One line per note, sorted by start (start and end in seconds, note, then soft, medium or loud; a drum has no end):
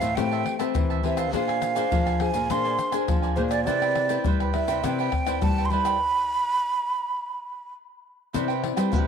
0.00 0.14 A2 medium
0.00 0.14 E3 medium
0.00 0.16 C5 medium
0.00 0.16 E5 medium
0.00 0.17 F5 medium
0.00 0.15 A5 medium
0.00 pandeiro medium
0.00 shaker medium
0.16 0.42 A2 medium
0.16 0.73 A3 medium
0.16 0.56 C4 medium
0.16 0.30 G4 soft
0.16 0.56 G4 medium
0.16 0.56 B4 medium
0.16 0.31 C5 soft
0.16 0.31 E5 soft
0.16 0.60 G5 medium
0.16 0.30 A5 medium
0.16 pandeiro medium
0.16 tamborim medium
0.16 shaker medium
0.16 surdo medium
0.31 0.44 C5 medium
0.31 0.45 E5 medium
0.31 0.45 A5 medium
0.31 pandeiro soft
0.31 shaker soft
0.45 muted cavaquinho stroke soft
0.45 pandeiro medium
0.45 tamborim medium
0.59 0.99 C4 medium
0.59 1.00 G4 medium
0.59 1.00 B4 medium
0.59 0.89 C5 medium
0.59 0.88 E5 medium
0.59 0.88 A5 medium
0.59 pandeiro medium
0.59 tamborim medium
0.59 shaker medium
0.75 1.00 E3 medium
0.75 1.31 E3 medium
0.75 pandeiro medium
0.75 tamborim medium
0.75 shaker medium
0.75 surdo loud
0.90 1.03 C5 soft
0.90 1.04 E5 medium
0.90 1.03 A5 medium
0.90 pandeiro soft
0.90 shaker soft
1.03 1.34 E3 medium
1.03 1.29 C4 medium
1.03 1.18 G4 soft
1.03 1.29 G4 medium
1.03 1.30 B4 medium
1.03 1.18 C5 soft
1.03 1.20 E5 medium
1.03 1.17 E5 medium
1.03 1.16 A5 medium
1.03 pandeiro medium
1.17 1.33 C5 medium
1.17 1.32 E5 medium
1.17 1.33 F5 medium
1.17 1.32 A5 medium
1.17 pandeiro medium
1.17 tamborim medium
1.17 shaker medium
1.33 1.83 A#2 medium
1.33 1.89 A#3 medium
1.33 1.47 D4 soft
1.33 1.73 D4 medium
1.33 1.73 G#4 medium
1.33 1.47 A#4 medium
1.33 1.74 C5 medium
1.33 1.47 D5 soft
1.33 2.23 F5 medium
1.33 1.46 G#5 medium
1.33 pandeiro medium
1.33 shaker medium
1.33 surdo medium
1.48 1.76 A#4 medium
1.48 1.75 D5 medium
1.48 1.74 G#5 medium
1.48 pandeiro soft
1.48 tamborim medium
1.48 shaker soft
1.62 pandeiro medium
1.62 tamborim medium
1.62 shaker medium
1.75 2.16 D4 medium
1.75 2.17 G#4 medium
1.75 1.91 A#4 medium
1.75 2.17 C5 medium
1.75 1.90 D5 medium
1.75 1.90 G#5 medium
1.75 pandeiro medium
1.75 shaker medium
1.91 2.29 F3 medium
1.91 2.48 F3 medium
1.91 2.05 D4 soft
1.91 2.06 A#4 medium
1.91 2.06 D5 medium
1.91 2.05 G#5 medium
1.91 pandeiro medium
1.91 shaker medium
1.91 surdo medium
2.06 2.35 A#4 medium
2.06 2.34 D5 medium
2.06 2.33 G#5 medium
2.06 pandeiro soft
2.06 tamborim medium
2.06 shaker soft
2.20 2.38 D4 medium
2.20 2.38 G#4 soft
2.20 2.39 C5 medium
2.20 2.52 G#5 medium
2.20 pandeiro medium
2.20 tamborim medium
2.34 2.48 A#2 medium
2.34 2.49 A#4 medium
2.34 2.49 D5 medium
2.34 2.48 G#5 medium
2.34 pandeiro medium
2.34 shaker medium
2.50 2.75 A#2 medium
2.50 3.06 A#3 medium
2.50 2.64 D4 soft
2.50 2.90 D4 medium
2.50 2.90 G#4 medium
2.50 2.64 A#4 soft
2.50 2.90 C5 medium
2.50 2.64 D5 soft
2.50 2.63 G#5 medium
2.50 2.94 C6 medium
2.50 pandeiro medium
2.50 tamborim medium
2.50 shaker medium
2.50 surdo medium
2.64 2.77 A#4 medium
2.64 2.77 D5 medium
2.64 2.78 G#5 medium
2.64 pandeiro soft
2.64 shaker soft
2.78 muted cavaquinho stroke soft
2.78 pandeiro medium
2.78 tamborim medium
2.78 shaker medium
2.92 3.33 D4 medium
2.92 3.33 G#4 medium
2.92 3.22 A#4 medium
2.92 3.33 C5 medium
2.92 3.21 D5 medium
2.92 3.21 G#5 medium
2.92 pandeiro medium
2.92 tamborim medium
2.92 shaker medium
3.08 3.38 F3 medium
3.08 3.65 F3 medium
3.08 pandeiro medium
3.08 tamborim medium
3.08 shaker medium
3.08 surdo loud
3.22 3.36 A#4 medium
3.22 3.37 D5 medium
3.22 3.36 G#5 medium
3.22 pandeiro soft
3.22 shaker soft
3.36 3.67 A#2 medium
3.36 3.51 D4 soft
3.36 3.62 D4 medium
3.36 3.62 G#4 medium
3.36 3.51 A#4 medium
3.36 3.42 C5 medium
3.36 3.62 C5 medium
3.36 3.50 D5 soft
3.36 3.49 G#5 medium
3.36 pandeiro medium
3.49 3.66 A#4 medium
3.49 3.64 D5 loud
3.49 3.66 D5 medium
3.49 3.65 G#5 medium
3.49 pandeiro medium
3.49 tamborim medium
3.49 shaker medium
3.64 4.17 C3 medium
3.64 4.23 C4 medium
3.64 3.80 E4 soft
3.64 4.07 E4 medium
3.64 3.81 B4 medium
3.64 4.07 B4 medium
3.64 3.81 C5 soft
3.64 4.20 D5 loud
3.64 pandeiro medium
3.64 shaker medium
3.64 surdo medium
3.68 4.07 D5 medium
3.68 3.81 G5 medium
3.82 4.10 B4 medium
3.82 4.10 C5 medium
3.82 4.08 G5 medium
3.82 pandeiro soft
3.82 tamborim medium
3.82 shaker soft
3.96 pandeiro medium
3.96 tamborim medium
4.09 4.50 E4 medium
4.09 4.50 B4 medium
4.09 4.24 B4 medium
4.09 4.25 C5 medium
4.09 4.50 D5 medium
4.09 4.24 G5 medium
4.09 pandeiro medium
4.09 shaker medium
4.25 4.63 G3 medium
4.25 4.81 G3 medium
4.25 4.39 E4 medium
4.25 4.40 B4 medium
4.25 4.40 C5 soft
4.25 4.39 G5 medium
4.25 pandeiro medium
4.25 shaker medium
4.25 surdo loud
4.40 4.68 B4 medium
4.40 4.69 C5 medium
4.40 4.67 G5 medium
4.40 pandeiro soft
4.40 tamborim medium
4.40 shaker soft
4.54 4.79 E4 medium
4.54 4.80 B4 medium
4.54 4.80 D5 medium
4.54 4.86 E5 medium
4.54 pandeiro medium
4.54 tamborim medium
4.68 4.81 C3 medium
4.68 4.83 B4 medium
4.68 4.83 C5 medium
4.68 4.82 G5 medium
4.68 pandeiro medium
4.68 shaker medium
4.84 5.09 C3 medium
4.84 5.39 C4 medium
4.84 5.11 E4 medium
4.84 4.98 E4 soft
4.84 5.12 B4 medium
4.84 4.98 B4 medium
4.84 4.98 C5 medium
4.84 5.12 D5 medium
4.84 5.42 G5 loud
4.84 4.99 G5 medium
4.84 pandeiro medium
4.84 tamborim medium
4.84 shaker medium
4.84 surdo medium
4.99 5.13 B4 medium
4.99 5.12 C5 medium
4.99 5.13 G5 medium
4.99 pandeiro soft
4.99 shaker soft
5.12 muted cavaquinho stroke soft
5.12 pandeiro medium
5.12 tamborim medium
5.12 surdo medium
5.27 5.67 E4 medium
5.27 5.67 B4 medium
5.27 5.56 B4 medium
5.27 5.56 C5 medium
5.27 5.67 D5 medium
5.27 5.55 G5 medium
5.27 pandeiro medium
5.27 tamborim medium
5.27 shaker medium
5.42 5.67 G3 medium
5.42 5.98 G3 medium
5.42 5.67 A5 loud
5.42 pandeiro medium
5.42 tamborim medium
5.42 shaker medium
5.42 surdo loud
5.58 5.71 B4 medium
5.58 5.71 C5 medium
5.58 5.71 G5 medium
5.58 pandeiro soft
5.58 shaker soft
5.65 5.72 C6 medium
5.70 5.96 G3 medium
5.70 5.85 E4 soft
5.70 5.96 E4 medium
5.70 5.97 B4 medium
5.70 5.86 B4 medium
5.70 5.85 C5 medium
5.70 5.97 D5 medium
5.70 5.85 G5 medium
5.70 7.75 B5 loud
5.70 pandeiro medium
5.85 6.00 B4 medium
5.85 6.00 C5 medium
5.85 5.99 G5 medium
5.85 pandeiro medium
5.85 tamborim medium
5.85 shaker medium
8.33 8.71 C3 loud
8.33 8.90 C4 medium
8.33 8.47 E4 medium
8.33 8.52 E4 medium
8.33 8.48 B4 medium
8.33 8.52 B4 medium
8.33 8.47 C5 medium
8.33 8.52 D5 medium
8.33 8.47 G5 soft
8.33 pandeiro medium
8.33 shaker medium
8.33 surdo medium
8.48 8.62 B4 medium
8.48 8.62 C5 medium
8.48 8.62 G5 medium
8.48 pandeiro soft
8.48 shaker soft
8.63 9.03 E4 medium
8.63 9.03 B4 medium
8.63 9.03 D5 medium
8.63 muted cavaquinho stroke soft
8.63 pandeiro medium
8.63 tamborim medium
8.76 8.92 G3 medium
8.76 8.91 B4 medium
8.76 8.92 C5 medium
8.76 8.91 G5 medium
8.76 pandeiro medium
8.76 tamborim medium
8.76 shaker medium
8.92 9.07 C3 medium
8.92 9.07 G3 medium
8.92 9.06 E4 medium
8.92 9.07 B4 medium
8.92 9.06 C5 medium
8.92 9.07 G5 medium
8.92 pandeiro medium
8.92 shaker medium
8.92 surdo loud